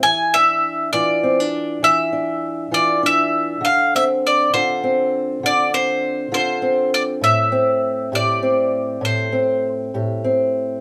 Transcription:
<<
  \new Staff \with { instrumentName = "Mandolin" } { \time 12/8 \key a \minor \tempo 4. = 67 gis''8 e''4 d''4. e''4. d''8 e''4 | f''8 e''8 d''8 c''4. d''8 c''4 c''4 d''8 | e''4. d''4. c''4 r2 | }
  \new Staff \with { instrumentName = "Steel-string acoustic guitar" } { \time 12/8 \key a \minor << { r8 d'4 f'8 c'16 d'4~ d'16 d'4 f'8 d'4 | r8 c'4 f'8 c'4. c'4 f'8 c'4~ | c'8 c'4 g'8 c'4. c'4 g'8 c'4 | } \\ { e4. e4. e4. e4. | d4. d4. d4. d4. | a,4. a,4. a,4. a,4. | } >> }
>>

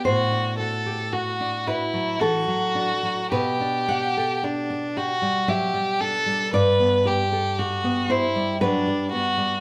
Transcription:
<<
  \new Staff \with { instrumentName = "Violin" } { \time 3/4 \key g \major \tempo 4 = 56 fis'8 a'8 fis'8 e'8 fis'4 | g'4 d'8 fis'8 g'8 a'8 | b'8 g'8 fis'8 e'8 d'8 fis'8 | }
  \new Staff \with { instrumentName = "Nylon-string guitar" } { \time 3/4 \key g \major << { c''4. b'8 a'4 | b'8 fis''4. e''4 | d''4. c''8 b'4 | } \\ { a,16 d'16 fis'16 g'16 fis'16 d'16 fis'16 fis16 e16 fis16 d'16 fis16 | b,16 d'16 g'16 a'16 g'16 d'16 g'16 g16 fis16 g16 d'16 g16 | g,16 b16 g'16 a'16 g'16 b16 g'16 g16 fis16 g16 b16 g16 | } >> }
>>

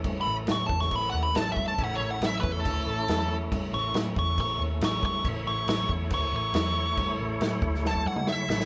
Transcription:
<<
  \new Staff \with { instrumentName = "Lead electric guitar" } { \time 4/4 \key a \mixolydian \tempo 4 = 139 \tuplet 3/2 { r8 b''8 r8 cis'''8 a''8 cis'''8 b''8 fis''8 b''8 a''8 e''8 a''8 } | \tuplet 3/2 { fis''8 cis''8 fis''8 e''8 b'8 a'8~ } a'4. r8 | r8 cis'''8 r8 cis'''8 cis'''8 r8 cis'''8 cis'''8 | r8 cis'''8 cis'''8 r8 cis'''8 cis'''4.~ |
cis'''4. r8 a''8 fis''8 e''8 e''8 | }
  \new Staff \with { instrumentName = "Tonewheel organ" } { \time 4/4 \key a \mixolydian <e a cis'>1 | <a cis' e'>1~ | <a cis' e'>1 | <a e' cis''>1~ |
<a e' cis''>1 | }
  \new Staff \with { instrumentName = "Picked electric bass" } { \clef bass \time 4/4 \key a \mixolydian g,8 a,,8 a,8 e,8 a,,8 dis,8 a,,8 g,8 | a,,8 a,,8 a,,8 e,8 d,8 a,,8 e,4 | g,8 a,,8 a,8 e,8 a,,8 dis,8 a,,8 g,8 | a,,8 a,,8 a,,8 e,8 d,8 a,,8 e,4 |
g,8 a,,8 a,8 d,4 g,4 a,,8 | }
  \new DrumStaff \with { instrumentName = "Drums" } \drummode { \time 4/4 <cymc bd>4 <cymc sn>8 bd16 sn16 <cymc bd>4 <cymc sn>8 bd8 | <cymc bd>4 <cymc sn>8 bd8 <cymc bd>4 <cymc sn>4 | <cymc bd>4 <cymc sn>8 bd8 <cymc bd>4 <cymc sn>8 bd8 | <cymc bd>4 <cymc sn>8 bd8 <cymc bd>4 <cymc sn>4 |
<cymc bd>4 <cymc sn>8 bd16 sn16 sn16 bd8 toml16 sn8 sn16 sn16 | }
>>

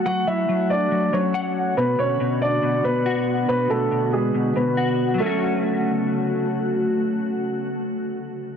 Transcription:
<<
  \new Staff \with { instrumentName = "Grand piano" } { \time 4/4 \key fis \minor \tempo 4 = 140 <fis' fis''>8 <e' e''>4 <d' d''>4 <cis' cis''>4. | <b b'>8 <cis' cis''>4 <d' d''>4 <b b'>4. | <b b'>8 <a a'>4 <gis gis'>4 <b b'>4. | a2. r4 |
r1 | }
  \new Staff \with { instrumentName = "Ambient pad" } { \time 4/4 \key fis \minor <a fis'>1 | <d b fis'>1~ | <d b fis'>1 | <cis a fis'>1~ |
<cis a fis'>1 | }
  \new Staff \with { instrumentName = "Clean electric guitar" } { \clef bass \time 4/4 \key fis \minor <fis fis''>8 fis8 fis4 fis8 fis8 fis''4 | b,8 b,8 b,4 b,8 b,8 fis'4 | b,8 b,8 b,4 b,8 b,8 fis'4 | <fis a cis' fis'>1~ |
<fis a cis' fis'>1 | }
>>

